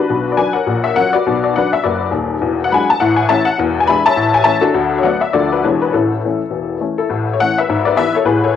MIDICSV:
0, 0, Header, 1, 2, 480
1, 0, Start_track
1, 0, Key_signature, 3, "major"
1, 0, Tempo, 292826
1, 116, Time_signature, 4, 2, 24, 8
1, 14033, End_track
2, 0, Start_track
2, 0, Title_t, "Honky-tonk piano"
2, 0, Program_c, 0, 3
2, 0, Note_on_c, 0, 62, 52
2, 0, Note_on_c, 0, 66, 54
2, 0, Note_on_c, 0, 71, 69
2, 156, Note_on_c, 0, 47, 55
2, 160, Note_on_c, 0, 35, 50
2, 385, Control_c, 0, 64, 127
2, 481, Note_off_c, 0, 66, 0
2, 483, Note_off_c, 0, 62, 0
2, 511, Note_off_c, 0, 71, 0
2, 521, Note_on_c, 0, 74, 58
2, 548, Note_off_c, 0, 47, 0
2, 550, Note_off_c, 0, 35, 0
2, 606, Note_off_c, 0, 74, 0
2, 611, Note_on_c, 0, 80, 81
2, 613, Control_c, 0, 64, 0
2, 617, Note_on_c, 0, 54, 38
2, 620, Note_on_c, 0, 62, 34
2, 620, Note_on_c, 0, 71, 62
2, 630, Note_on_c, 0, 74, 59
2, 871, Note_on_c, 0, 78, 69
2, 875, Note_off_c, 0, 54, 0
2, 877, Note_off_c, 0, 62, 0
2, 881, Note_off_c, 0, 71, 0
2, 886, Note_off_c, 0, 74, 0
2, 891, Note_on_c, 0, 73, 47
2, 895, Note_off_c, 0, 80, 0
2, 896, Note_on_c, 0, 70, 52
2, 1089, Note_on_c, 0, 46, 60
2, 1099, Note_on_c, 0, 34, 58
2, 1330, Control_c, 0, 64, 127
2, 1336, Note_off_c, 0, 73, 0
2, 1339, Note_off_c, 0, 70, 0
2, 1360, Note_off_c, 0, 78, 0
2, 1373, Note_on_c, 0, 76, 79
2, 1492, Note_off_c, 0, 46, 0
2, 1498, Note_off_c, 0, 34, 0
2, 1560, Note_off_c, 0, 76, 0
2, 1573, Note_on_c, 0, 78, 86
2, 1583, Control_c, 0, 64, 0
2, 1586, Note_on_c, 0, 70, 62
2, 1587, Note_on_c, 0, 61, 38
2, 1590, Note_on_c, 0, 54, 39
2, 1605, Note_on_c, 0, 73, 65
2, 1842, Note_off_c, 0, 61, 0
2, 1844, Note_off_c, 0, 70, 0
2, 1845, Note_off_c, 0, 54, 0
2, 1851, Note_on_c, 0, 74, 83
2, 1853, Note_off_c, 0, 73, 0
2, 1856, Note_off_c, 0, 78, 0
2, 1879, Note_on_c, 0, 66, 53
2, 1884, Note_on_c, 0, 71, 54
2, 2074, Note_on_c, 0, 47, 71
2, 2085, Note_on_c, 0, 35, 57
2, 2298, Control_c, 0, 64, 127
2, 2311, Note_off_c, 0, 66, 0
2, 2314, Note_off_c, 0, 71, 0
2, 2329, Note_off_c, 0, 74, 0
2, 2355, Note_on_c, 0, 74, 70
2, 2466, Note_off_c, 0, 47, 0
2, 2472, Note_off_c, 0, 35, 0
2, 2530, Note_off_c, 0, 74, 0
2, 2537, Control_c, 0, 64, 0
2, 2554, Note_on_c, 0, 78, 74
2, 2575, Note_on_c, 0, 54, 42
2, 2580, Note_on_c, 0, 74, 63
2, 2584, Note_on_c, 0, 62, 46
2, 2585, Note_on_c, 0, 71, 61
2, 2822, Note_off_c, 0, 74, 0
2, 2823, Note_off_c, 0, 54, 0
2, 2824, Note_off_c, 0, 71, 0
2, 2827, Note_off_c, 0, 78, 0
2, 2829, Note_off_c, 0, 62, 0
2, 2835, Note_on_c, 0, 76, 78
2, 3009, Note_on_c, 0, 74, 72
2, 3010, Note_off_c, 0, 76, 0
2, 3013, Note_on_c, 0, 42, 60
2, 3020, Note_on_c, 0, 30, 64
2, 3029, Note_on_c, 0, 71, 54
2, 3039, Note_on_c, 0, 66, 53
2, 3414, Note_off_c, 0, 42, 0
2, 3418, Note_off_c, 0, 30, 0
2, 3460, Note_off_c, 0, 71, 0
2, 3461, Note_on_c, 0, 27, 68
2, 3466, Note_off_c, 0, 66, 0
2, 3469, Note_on_c, 0, 39, 60
2, 3483, Note_off_c, 0, 74, 0
2, 3851, Note_off_c, 0, 27, 0
2, 3856, Note_off_c, 0, 39, 0
2, 3953, Note_on_c, 0, 28, 69
2, 3959, Note_on_c, 0, 40, 69
2, 4223, Control_c, 0, 64, 127
2, 4331, Note_on_c, 0, 78, 78
2, 4363, Note_off_c, 0, 28, 0
2, 4366, Note_off_c, 0, 40, 0
2, 4431, Note_off_c, 0, 78, 0
2, 4453, Control_c, 0, 64, 0
2, 4460, Note_on_c, 0, 83, 80
2, 4465, Note_on_c, 0, 54, 43
2, 4468, Note_on_c, 0, 56, 47
2, 4482, Note_on_c, 0, 62, 51
2, 4486, Note_on_c, 0, 78, 62
2, 4491, Note_on_c, 0, 80, 67
2, 4721, Note_off_c, 0, 54, 0
2, 4723, Note_off_c, 0, 56, 0
2, 4733, Note_off_c, 0, 62, 0
2, 4734, Note_off_c, 0, 78, 0
2, 4737, Note_off_c, 0, 80, 0
2, 4739, Note_off_c, 0, 83, 0
2, 4753, Note_on_c, 0, 81, 84
2, 4920, Note_on_c, 0, 78, 82
2, 4929, Note_off_c, 0, 81, 0
2, 4933, Note_on_c, 0, 45, 80
2, 4935, Note_on_c, 0, 33, 74
2, 5183, Control_c, 0, 64, 127
2, 5187, Note_on_c, 0, 80, 74
2, 5209, Note_off_c, 0, 78, 0
2, 5334, Note_off_c, 0, 45, 0
2, 5335, Note_off_c, 0, 33, 0
2, 5386, Note_off_c, 0, 80, 0
2, 5391, Note_on_c, 0, 81, 92
2, 5399, Note_on_c, 0, 52, 44
2, 5399, Note_on_c, 0, 57, 48
2, 5404, Note_on_c, 0, 76, 70
2, 5411, Note_on_c, 0, 73, 75
2, 5412, Control_c, 0, 64, 0
2, 5413, Note_on_c, 0, 61, 53
2, 5658, Note_on_c, 0, 78, 84
2, 5662, Note_off_c, 0, 52, 0
2, 5662, Note_off_c, 0, 57, 0
2, 5671, Note_off_c, 0, 76, 0
2, 5672, Note_off_c, 0, 61, 0
2, 5675, Note_off_c, 0, 73, 0
2, 5685, Note_off_c, 0, 81, 0
2, 5861, Note_off_c, 0, 78, 0
2, 5876, Note_on_c, 0, 28, 72
2, 5889, Note_on_c, 0, 40, 84
2, 6130, Control_c, 0, 64, 127
2, 6234, Note_on_c, 0, 80, 77
2, 6284, Note_off_c, 0, 28, 0
2, 6291, Note_off_c, 0, 40, 0
2, 6342, Note_off_c, 0, 80, 0
2, 6351, Note_on_c, 0, 83, 97
2, 6362, Note_on_c, 0, 52, 42
2, 6371, Note_on_c, 0, 56, 46
2, 6377, Note_on_c, 0, 62, 49
2, 6379, Control_c, 0, 64, 0
2, 6382, Note_on_c, 0, 76, 60
2, 6385, Note_on_c, 0, 80, 70
2, 6624, Note_off_c, 0, 52, 0
2, 6631, Note_off_c, 0, 56, 0
2, 6635, Note_off_c, 0, 62, 0
2, 6636, Note_off_c, 0, 76, 0
2, 6643, Note_off_c, 0, 80, 0
2, 6645, Note_off_c, 0, 83, 0
2, 6650, Note_on_c, 0, 81, 98
2, 6661, Note_on_c, 0, 76, 74
2, 6670, Note_on_c, 0, 73, 73
2, 6825, Note_on_c, 0, 33, 61
2, 6834, Note_on_c, 0, 45, 73
2, 7099, Control_c, 0, 64, 127
2, 7101, Note_off_c, 0, 76, 0
2, 7106, Note_off_c, 0, 73, 0
2, 7116, Note_on_c, 0, 80, 88
2, 7129, Note_off_c, 0, 81, 0
2, 7238, Note_off_c, 0, 33, 0
2, 7243, Note_off_c, 0, 45, 0
2, 7277, Note_on_c, 0, 81, 96
2, 7287, Note_on_c, 0, 52, 48
2, 7292, Note_on_c, 0, 73, 72
2, 7294, Note_on_c, 0, 76, 72
2, 7298, Note_on_c, 0, 57, 48
2, 7299, Note_on_c, 0, 61, 51
2, 7310, Note_off_c, 0, 80, 0
2, 7335, Control_c, 0, 64, 0
2, 7558, Note_on_c, 0, 69, 79
2, 7559, Note_off_c, 0, 52, 0
2, 7561, Note_on_c, 0, 66, 64
2, 7567, Note_off_c, 0, 57, 0
2, 7568, Note_off_c, 0, 61, 0
2, 7568, Note_on_c, 0, 62, 69
2, 7574, Note_off_c, 0, 73, 0
2, 7575, Note_off_c, 0, 76, 0
2, 7588, Note_off_c, 0, 81, 0
2, 7775, Note_on_c, 0, 38, 78
2, 7791, Note_on_c, 0, 50, 57
2, 8058, Control_c, 0, 64, 127
2, 8117, Note_off_c, 0, 66, 0
2, 8120, Note_off_c, 0, 62, 0
2, 8157, Note_off_c, 0, 69, 0
2, 8164, Note_on_c, 0, 73, 78
2, 8192, Note_off_c, 0, 38, 0
2, 8201, Note_off_c, 0, 50, 0
2, 8246, Note_on_c, 0, 78, 70
2, 8255, Note_on_c, 0, 54, 42
2, 8261, Note_on_c, 0, 71, 62
2, 8265, Note_on_c, 0, 59, 44
2, 8267, Note_off_c, 0, 73, 0
2, 8267, Note_on_c, 0, 57, 45
2, 8280, Note_on_c, 0, 74, 54
2, 8295, Control_c, 0, 64, 0
2, 8525, Note_off_c, 0, 54, 0
2, 8533, Note_off_c, 0, 59, 0
2, 8534, Note_off_c, 0, 57, 0
2, 8539, Note_off_c, 0, 71, 0
2, 8544, Note_on_c, 0, 76, 75
2, 8549, Note_off_c, 0, 74, 0
2, 8552, Note_off_c, 0, 78, 0
2, 8743, Note_on_c, 0, 74, 79
2, 8744, Note_off_c, 0, 76, 0
2, 8744, Note_on_c, 0, 50, 62
2, 8748, Note_on_c, 0, 38, 65
2, 8751, Note_on_c, 0, 53, 34
2, 8758, Note_on_c, 0, 69, 60
2, 8762, Note_on_c, 0, 57, 43
2, 8762, Note_on_c, 0, 62, 40
2, 8765, Note_on_c, 0, 65, 52
2, 9011, Control_c, 0, 64, 127
2, 9016, Note_off_c, 0, 53, 0
2, 9024, Note_off_c, 0, 57, 0
2, 9025, Note_off_c, 0, 62, 0
2, 9028, Note_off_c, 0, 69, 0
2, 9032, Note_off_c, 0, 65, 0
2, 9041, Note_off_c, 0, 74, 0
2, 9053, Note_on_c, 0, 71, 70
2, 9157, Note_off_c, 0, 50, 0
2, 9160, Note_off_c, 0, 38, 0
2, 9239, Note_off_c, 0, 71, 0
2, 9244, Note_on_c, 0, 73, 63
2, 9249, Note_on_c, 0, 56, 40
2, 9252, Note_on_c, 0, 28, 63
2, 9254, Note_on_c, 0, 40, 61
2, 9258, Note_on_c, 0, 52, 41
2, 9260, Control_c, 0, 64, 0
2, 9265, Note_on_c, 0, 62, 39
2, 9491, Control_c, 0, 64, 127
2, 9509, Note_off_c, 0, 56, 0
2, 9516, Note_off_c, 0, 52, 0
2, 9521, Note_off_c, 0, 62, 0
2, 9531, Note_off_c, 0, 73, 0
2, 9536, Note_on_c, 0, 71, 69
2, 9653, Note_off_c, 0, 28, 0
2, 9655, Note_off_c, 0, 40, 0
2, 9721, Note_off_c, 0, 71, 0
2, 9721, Note_on_c, 0, 69, 61
2, 9731, Note_on_c, 0, 33, 52
2, 9739, Note_on_c, 0, 45, 55
2, 9739, Note_on_c, 0, 64, 40
2, 9740, Control_c, 0, 64, 0
2, 9746, Note_on_c, 0, 61, 41
2, 9989, Control_c, 0, 64, 127
2, 10133, Note_off_c, 0, 33, 0
2, 10137, Note_off_c, 0, 45, 0
2, 10210, Control_c, 0, 64, 0
2, 10237, Note_off_c, 0, 61, 0
2, 10249, Note_on_c, 0, 52, 38
2, 10262, Note_on_c, 0, 61, 41
2, 10264, Note_on_c, 0, 57, 33
2, 10499, Note_off_c, 0, 52, 0
2, 10508, Note_off_c, 0, 61, 0
2, 10510, Note_off_c, 0, 57, 0
2, 10665, Note_on_c, 0, 40, 43
2, 10667, Note_on_c, 0, 28, 46
2, 11079, Note_off_c, 0, 28, 0
2, 11079, Note_off_c, 0, 40, 0
2, 11103, Note_off_c, 0, 64, 0
2, 11154, Note_on_c, 0, 52, 33
2, 11159, Note_off_c, 0, 69, 0
2, 11164, Note_on_c, 0, 57, 36
2, 11177, Note_on_c, 0, 61, 36
2, 11419, Note_off_c, 0, 52, 0
2, 11426, Note_off_c, 0, 57, 0
2, 11436, Note_off_c, 0, 61, 0
2, 11444, Note_on_c, 0, 69, 67
2, 11459, Note_on_c, 0, 64, 50
2, 11631, Note_on_c, 0, 45, 69
2, 11637, Note_on_c, 0, 33, 63
2, 11906, Control_c, 0, 64, 127
2, 11988, Note_off_c, 0, 64, 0
2, 12021, Note_off_c, 0, 69, 0
2, 12022, Note_on_c, 0, 73, 75
2, 12042, Note_off_c, 0, 45, 0
2, 12045, Note_off_c, 0, 33, 0
2, 12117, Note_off_c, 0, 73, 0
2, 12133, Control_c, 0, 64, 0
2, 12135, Note_on_c, 0, 78, 95
2, 12150, Note_on_c, 0, 52, 42
2, 12154, Note_on_c, 0, 57, 47
2, 12154, Note_on_c, 0, 73, 60
2, 12165, Note_on_c, 0, 61, 39
2, 12405, Note_off_c, 0, 52, 0
2, 12408, Note_off_c, 0, 57, 0
2, 12408, Note_off_c, 0, 73, 0
2, 12416, Note_off_c, 0, 61, 0
2, 12417, Note_off_c, 0, 78, 0
2, 12432, Note_on_c, 0, 76, 78
2, 12458, Note_on_c, 0, 71, 56
2, 12607, Note_on_c, 0, 32, 62
2, 12614, Note_on_c, 0, 44, 74
2, 12864, Control_c, 0, 64, 127
2, 12871, Note_off_c, 0, 71, 0
2, 12871, Note_on_c, 0, 74, 79
2, 12896, Note_on_c, 0, 71, 64
2, 12900, Note_off_c, 0, 76, 0
2, 13011, Note_off_c, 0, 32, 0
2, 13015, Note_off_c, 0, 44, 0
2, 13058, Note_on_c, 0, 52, 40
2, 13061, Note_off_c, 0, 71, 0
2, 13068, Note_on_c, 0, 64, 48
2, 13069, Note_off_c, 0, 74, 0
2, 13069, Note_on_c, 0, 76, 95
2, 13073, Note_on_c, 0, 59, 46
2, 13086, Note_on_c, 0, 71, 64
2, 13093, Control_c, 0, 64, 0
2, 13328, Note_off_c, 0, 52, 0
2, 13334, Note_off_c, 0, 64, 0
2, 13338, Note_off_c, 0, 59, 0
2, 13353, Note_off_c, 0, 71, 0
2, 13358, Note_on_c, 0, 73, 78
2, 13364, Note_off_c, 0, 76, 0
2, 13384, Note_on_c, 0, 69, 69
2, 13524, Note_on_c, 0, 33, 66
2, 13530, Note_on_c, 0, 45, 77
2, 13531, Note_on_c, 0, 71, 77
2, 13548, Note_on_c, 0, 68, 61
2, 13552, Note_off_c, 0, 69, 0
2, 13552, Note_off_c, 0, 73, 0
2, 13817, Control_c, 0, 64, 127
2, 13823, Note_off_c, 0, 68, 0
2, 13829, Note_on_c, 0, 73, 81
2, 13835, Note_off_c, 0, 71, 0
2, 13843, Note_on_c, 0, 69, 53
2, 13946, Note_off_c, 0, 33, 0
2, 13950, Note_off_c, 0, 45, 0
2, 14014, Note_off_c, 0, 73, 0
2, 14021, Note_off_c, 0, 69, 0
2, 14033, End_track
0, 0, End_of_file